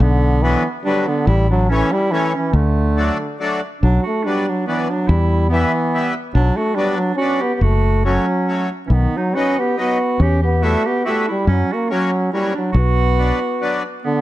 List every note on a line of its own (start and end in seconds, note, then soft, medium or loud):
0.00 0.55 B1 medium
0.00 0.44 D3 medium
0.00 0.43 B3 medium
0.43 0.63 D3 medium
0.43 0.65 E3 medium
0.43 0.63 F#3 medium
0.43 0.65 B3 medium
0.43 0.63 B3 medium
0.84 1.06 D3 medium
0.84 1.06 F#3 medium
0.84 1.09 G3 medium
0.84 1.06 B3 medium
0.84 1.09 D4 medium
1.07 1.29 D3 medium
1.07 1.28 B3 medium
1.26 1.82 A1 medium
1.26 1.49 G3 medium
1.26 1.49 E4 medium
1.50 1.68 F#3 medium
1.50 1.67 D4 medium
1.69 1.93 E3 medium
1.69 1.90 E3 medium
1.69 1.90 A3 medium
1.69 1.95 C#4 medium
1.69 1.90 C#4 medium
1.92 2.13 G3 loud
1.92 2.13 E4 medium
2.11 2.34 E3 medium
2.11 2.32 E3 medium
2.11 2.32 A3 medium
2.11 2.33 C#4 medium
2.34 2.57 E3 medium
2.34 2.55 C#4 medium
2.53 3.09 D2 medium
2.53 3.40 D3 medium
2.53 3.39 A3 medium
2.97 3.18 F#3 medium
2.97 3.18 A3 medium
2.97 3.18 D4 medium
3.40 3.61 F#3 medium
3.40 3.61 A3 medium
3.40 3.61 D4 medium
3.81 3.98 B1 medium
3.81 4.04 F#3 medium
3.81 4.02 D4 medium
4.02 4.25 F#4 medium
4.06 4.27 A3 medium
4.24 4.46 F#3 medium
4.24 4.51 G3 medium
4.24 4.46 B3 soft
4.24 4.47 D4 medium
4.24 4.46 D4 medium
4.47 4.68 F#3 medium
4.47 4.65 D4 medium
4.66 4.91 E3 medium
4.66 4.88 F#3 medium
4.66 4.91 B3 medium
4.66 4.88 B3 medium
4.66 4.88 D4 medium
4.90 5.11 F#3 medium
4.90 5.09 D4 medium
5.08 5.64 E2 medium
5.08 5.51 G3 medium
5.08 5.49 E4 medium
5.49 6.12 E3 loud
5.49 5.72 G3 medium
5.49 6.11 B3 medium
5.49 5.72 B3 medium
5.49 5.72 E4 medium
5.94 6.14 G3 medium
5.94 6.14 B3 soft
5.94 6.15 E4 medium
6.35 6.50 B1 medium
6.35 6.58 F#3 medium
6.35 6.59 D4 medium
6.56 6.76 A3 medium
6.56 6.77 F#4 medium
6.75 6.98 F#3 medium
6.75 6.98 G3 medium
6.75 6.98 B3 medium
6.75 6.99 D4 medium
6.75 6.98 D4 medium
6.97 7.15 F#3 medium
6.97 7.17 D4 medium
7.16 7.41 F#3 medium
7.16 7.43 C#4 medium
7.16 7.42 F#4 medium
7.20 7.41 B3 medium
7.20 7.41 D4 medium
7.41 7.55 B3 medium
7.41 7.55 G4 medium
7.55 7.65 B3 medium
7.55 7.63 G4 medium
7.61 8.17 F#1 medium
7.61 8.05 A3 loud
7.61 8.05 F#4 medium
8.05 8.26 F#3 medium
8.05 8.68 F#3 medium
8.05 8.26 A3 medium
8.05 8.26 C#4 medium
8.05 8.68 C#4 medium
8.48 8.69 F#3 medium
8.48 8.69 A3 soft
8.48 8.69 C#4 medium
8.87 9.06 B1 medium
8.87 8.96 E3 medium
8.87 8.93 C#4 medium
8.91 9.18 D#3 medium
8.91 9.19 B3 medium
9.17 9.37 F#3 medium
9.17 9.36 D#4 medium
9.35 9.56 F#3 medium
9.35 9.56 B3 medium
9.35 9.60 C#4 medium
9.35 9.57 D#4 medium
9.35 9.61 F#4 medium
9.59 9.78 B3 medium
9.59 9.79 G4 medium
9.77 9.98 F#3 medium
9.77 9.98 B3 medium
9.77 10.23 B3 medium
9.77 9.98 D#4 medium
9.77 10.24 F#4 medium
10.20 10.75 E2 medium
10.20 10.43 C#4 medium
10.20 10.42 G4 medium
10.42 10.66 B3 medium
10.42 10.64 G4 medium
10.61 10.83 G3 medium
10.61 10.88 A3 medium
10.61 10.83 B3 medium
10.61 10.83 E4 medium
10.61 10.87 F#4 medium
10.85 11.06 B3 medium
10.85 11.04 G4 medium
11.05 11.26 G3 medium
11.05 11.28 A3 medium
11.05 11.26 B3 medium
11.05 11.26 E4 medium
11.05 11.26 F#4 medium
11.28 11.47 G3 medium
11.28 11.46 E4 medium
11.47 11.62 F#2 medium
11.47 11.75 F#3 medium
11.47 11.73 C#4 medium
11.72 11.94 A#3 medium
11.72 11.91 F#4 medium
11.89 12.11 F#3 medium
11.89 12.33 F#3 medium
11.89 12.11 A#3 medium
11.89 12.32 C#4 medium
11.89 12.11 C#4 medium
12.33 12.54 F#3 medium
12.33 12.55 G3 medium
12.33 12.54 A#3 medium
12.33 12.54 C#4 medium
12.33 12.54 E4 medium
12.54 12.74 F#3 medium
12.54 12.72 D4 medium
12.72 13.31 B1 medium
12.72 13.80 F#4 medium
12.77 13.82 B3 medium
13.18 13.39 F#3 medium
13.18 13.39 B3 soft
13.18 13.39 D4 medium
13.61 13.83 F#3 medium
13.61 13.83 B3 medium
13.61 13.83 D4 medium
14.03 14.21 D3 medium
14.03 14.21 B3 medium